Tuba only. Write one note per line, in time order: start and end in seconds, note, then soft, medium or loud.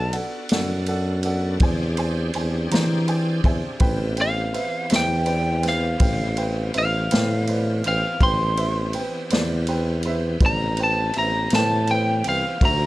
0.00 0.20 B1 medium
0.52 1.58 F#2 medium
1.61 2.31 E2 medium
2.35 2.69 E2 medium
2.72 3.41 E3 medium
3.44 3.61 E2 medium
3.80 4.60 A1 medium
4.92 5.98 E2 medium
6.00 6.71 A1 loud
6.76 7.09 A1 medium
7.12 7.82 A2 loud
7.86 8.03 A1 medium
8.21 9.01 A1 medium
9.32 10.38 E2 medium
10.40 11.11 A1 medium
11.16 11.50 A1 medium
11.52 12.22 A2 loud
12.26 12.43 C2 medium
12.61 12.86 D2 loud